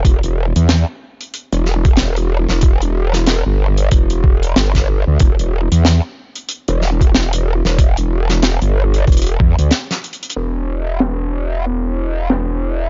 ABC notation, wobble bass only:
X:1
M:4/4
L:1/16
Q:"Swing 16ths" 1/4=93
K:Em
V:1 name="Wobble bass" clef=bass
E,,, E,,,2 E,,2 z4 E,,,6 E,,,- | E,,,4- E,,, G,,,3 E,,,4 G,,,3 D,, | E,,, E,,,2 E,,2 z4 E,,,6 E,,,- | E,,,4- E,,, G,,,3 E,,,2 E,, D,, z4 |
E,,,16 |]